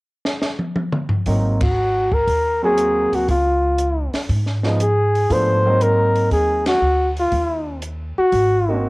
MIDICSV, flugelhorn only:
0, 0, Header, 1, 2, 480
1, 0, Start_track
1, 0, Tempo, 504626
1, 1203, Time_signature, 4, 2, 24, 8
1, 8457, End_track
2, 0, Start_track
2, 0, Title_t, "Flugelhorn"
2, 0, Program_c, 0, 56
2, 1548, Note_on_c, 0, 66, 82
2, 2029, Note_on_c, 0, 70, 101
2, 2043, Note_off_c, 0, 66, 0
2, 2502, Note_off_c, 0, 70, 0
2, 2517, Note_on_c, 0, 68, 94
2, 2999, Note_on_c, 0, 66, 80
2, 3013, Note_off_c, 0, 68, 0
2, 3136, Note_off_c, 0, 66, 0
2, 3142, Note_on_c, 0, 65, 73
2, 3907, Note_off_c, 0, 65, 0
2, 4591, Note_on_c, 0, 68, 87
2, 5067, Note_on_c, 0, 72, 93
2, 5082, Note_off_c, 0, 68, 0
2, 5541, Note_on_c, 0, 70, 92
2, 5555, Note_off_c, 0, 72, 0
2, 6009, Note_off_c, 0, 70, 0
2, 6015, Note_on_c, 0, 68, 83
2, 6318, Note_off_c, 0, 68, 0
2, 6348, Note_on_c, 0, 66, 90
2, 6789, Note_off_c, 0, 66, 0
2, 6842, Note_on_c, 0, 65, 73
2, 7420, Note_off_c, 0, 65, 0
2, 7780, Note_on_c, 0, 66, 102
2, 8368, Note_off_c, 0, 66, 0
2, 8457, End_track
0, 0, End_of_file